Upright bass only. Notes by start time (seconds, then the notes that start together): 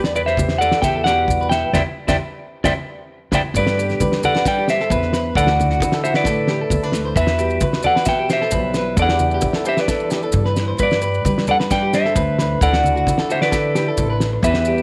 Already playing: E2
0.83 E2
1.73 E2
2.08 E2
2.64 E2
3.32 E2
3.54 G2
4.00 G3
4.90 E2
5.35 D2
5.80 D3
6.70 D2
7.16 E2
7.61 E3
8.52 B1
8.97 E2
9.42 E3
10.33 G2
10.80 G2
11.25 G3
12.15 D2
12.61 D2
13.98 A1
14.42 E2